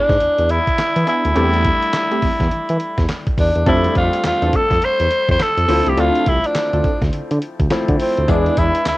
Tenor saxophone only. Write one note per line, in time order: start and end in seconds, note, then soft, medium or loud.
0.00 0.52 D4 loud
0.51 1.08 E4 loud
1.09 3.06 E4 loud
3.40 3.66 D4 medium
3.68 3.94 E4 medium
3.98 4.23 F4 loud
4.27 4.57 F4 loud
4.56 4.86 A4 loud
4.85 5.30 C5 loud
5.31 5.44 C5 loud
5.42 5.91 A4 loud
5.89 6.02 G4 loud
6.00 6.30 F4 medium
6.29 6.48 E4 medium
6.47 7.03 D4 medium
8.01 8.31 C4 medium
8.30 8.60 D4 medium
8.59 8.87 E4 loud
8.88 8.98 E4 medium